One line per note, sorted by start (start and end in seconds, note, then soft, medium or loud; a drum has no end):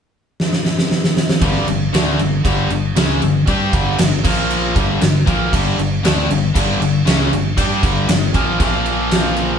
0.40 snare medium
0.53 snare medium
0.65 snare medium
0.79 snare medium
0.91 snare medium
1.04 snare medium
1.17 snare loud
1.29 snare loud
1.41 1.65 G1 medium
1.41 1.66 G2 loud
1.41 1.67 D3 medium
1.41 1.67 G3 loud
1.41 kick loud
1.41 crash medium
1.67 1.91 G1 medium
1.67 1.88 G2 medium
1.67 1.88 D3 medium
1.67 crash medium
1.93 2.17 D2 medium
1.93 2.18 D3 medium
1.93 2.18 A3 loud
1.93 2.19 D4 loud
1.93 snare loud
1.93 crash medium
2.19 2.43 G1 medium
2.19 2.39 G2 medium
2.19 2.40 D3 medium
2.19 crash medium
2.45 2.68 G1 medium
2.45 2.69 G2 medium
2.45 2.70 D3 loud
2.45 2.70 G3 loud
2.45 kick loud
2.45 crash medium
2.70 2.94 G1 medium
2.70 2.91 G2 medium
2.70 2.91 D3 medium
2.70 crash medium
2.96 3.20 C#2 medium
2.96 3.21 C#3 medium
2.96 3.21 G#3 loud
2.96 3.21 C#4 loud
2.96 snare loud
2.96 crash medium
3.22 3.45 G1 medium
3.22 3.42 G2 medium
3.22 3.42 D3 medium
3.22 crash medium
3.47 3.71 G2 medium
3.47 3.72 G3 medium
3.47 3.72 D4 loud
3.47 3.73 G4 loud
3.47 kick loud
3.47 crash medium
3.73 3.97 G1 medium
3.73 3.97 G2 medium
3.73 3.98 D3 loud
3.73 3.98 G3 loud
3.73 kick loud
3.73 crash medium
3.99 4.23 G1 medium
3.99 4.19 G2 medium
3.99 4.19 D3 medium
3.99 snare loud
3.99 crash medium
4.24 4.72 A#1 loud
4.24 4.74 A#2 medium
4.24 4.75 F3 loud
4.24 4.75 A#3 loud
4.24 kick loud
4.24 crash loud
4.50 crash medium
4.76 5.00 G1 loud
4.76 5.00 G2 loud
4.76 5.00 D3 medium
4.76 5.01 G3 medium
4.76 kick loud
4.76 crash medium
5.01 5.25 G1 medium
5.01 5.22 G2 medium
5.01 5.22 D3 medium
5.01 snare loud
5.01 crash medium
5.26 5.51 A#1 loud
5.26 5.51 A#2 medium
5.26 5.51 F3 loud
5.26 5.52 A#3 loud
5.26 kick loud
5.26 crash medium
5.52 5.76 G1 medium
5.52 5.77 G2 medium
5.52 5.77 D3 loud
5.52 5.78 G3 loud
5.52 kick loud
5.52 crash medium
5.78 6.02 G1 medium
5.78 5.99 G2 medium
5.78 5.99 D3 medium
5.78 crash medium
6.03 6.28 D2 loud
6.03 6.28 D3 loud
6.03 6.29 A3 medium
6.03 6.29 D4 loud
6.03 snare loud
6.03 crash medium
6.29 6.53 G1 medium
6.29 6.50 G2 medium
6.29 6.50 D3 medium
6.29 crash medium
6.54 6.79 G1 loud
6.54 6.79 G2 loud
6.54 6.80 D3 loud
6.54 6.80 G3 loud
6.54 kick loud
6.54 crash medium
6.80 7.04 G1 medium
6.80 7.01 G2 medium
6.80 7.01 D3 medium
6.80 crash medium
7.05 7.30 C#2 medium
7.05 7.31 C#3 medium
7.05 7.31 G#3 medium
7.05 7.31 C#4 loud
7.05 snare loud
7.05 crash medium
7.31 7.55 G1 medium
7.31 7.52 G2 medium
7.31 7.52 D3 medium
7.31 crash medium
7.57 7.81 G2 medium
7.57 7.82 G3 medium
7.57 7.82 D4 medium
7.57 7.83 G4 loud
7.57 kick loud
7.57 crash medium
7.83 8.07 G1 medium
7.83 8.07 G2 medium
7.83 8.08 D3 medium
7.83 8.08 G3 medium
7.83 kick loud
7.83 crash medium
8.08 8.33 G1 medium
8.08 8.29 G2 medium
8.08 8.30 D3 medium
8.08 snare loud
8.08 crash medium
8.34 8.58 A#1 loud
8.34 8.58 A#2 medium
8.34 8.59 F3 medium
8.34 8.59 A#3 medium
8.34 kick loud
8.34 crash medium
8.59 9.59 A#1 medium
8.59 9.59 A#2 loud
8.59 9.59 F3 loud
8.59 9.59 A#3 loud
8.59 kick loud
8.59 crash medium
8.86 crash soft
9.11 snare loud
9.11 crash medium
9.36 crash medium